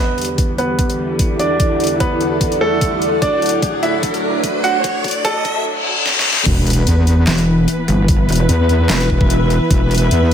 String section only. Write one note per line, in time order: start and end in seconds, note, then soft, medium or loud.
0.00 3.19 E2 medium
0.00 3.19 D3 medium
0.00 3.19 G3 medium
3.22 6.43 D2 medium
3.22 6.43 A2 medium
3.22 6.43 F#3 medium
6.46 10.34 E3 medium
6.46 10.34 B3 medium
6.46 10.34 B4 medium